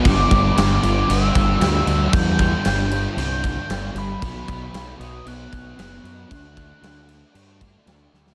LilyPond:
<<
  \new Staff \with { instrumentName = "Soft synth lead" } { \time 4/4 \key g \major \tempo 4 = 115 d'''4. d'''8 e'''2 | g'''2 g'''4. b''8~ | b''4. ees'''8 fis'''2 | fis'''2. r4 | }
  \new Staff \with { instrumentName = "Distorted electric guitar" } { \clef bass \time 4/4 \key g \major <g, d g>8 <d g>8 <g, d g>8 <d g>8 <g, d g>8 <d g>8 <g, d g>8 <d g>8 | <g, d g>8 <d g>8 <g, d g>8 <d g>8 <g, d g>8 <d g>8 <g, d g>8 <d g>8 | <b, fis b>8 <fis b>8 <b, fis b>8 <fis b>8 <b, fis b>8 <fis b>8 <b, fis b>8 <fis b>8 | <d a d'>8 <a d'>8 <d a d'>8 <a d'>8 <d a d'>8 <a d'>8 <d a d'>8 <a d'>8 | }
  \new Staff \with { instrumentName = "Fingered electric bass" } { \clef bass \time 4/4 \key g \major g,,8 g,,8 g,,8 g,,8 g,,8 g,,8 d,8 d,8 | e,4 g,,4 c,4 g,,8 g,,8 | b,,8 b,,8 b,,8 b,,8 b,,8 b,,8 fis,,8 fis,8 | d,4 d,4 g,4 d,8 d,8 | }
  \new DrumStaff \with { instrumentName = "Drums" } \drummode { \time 4/4 <cymc bd>8 <cymc bd>8 <cymc sn>8 cymc8 cymc8 <cymc bd>8 <cymc sn>8 cymc8 | <cymc bd>8 <cymc bd>8 <cymc sn>8 cymc8 cymc8 <cymc bd>8 <cymc sn>8 cymc8 | <cymc bd>8 <cymc bd>8 <cymc sn>8 cymc8 cymc8 <cymc bd>8 <cymc sn>8 cymc8 | <cymc bd>8 <cymc bd>8 <cymc sn>8 cymc8 cymc8 <cymc bd>8 <cymc sn>8 sn16 sn16 | }
>>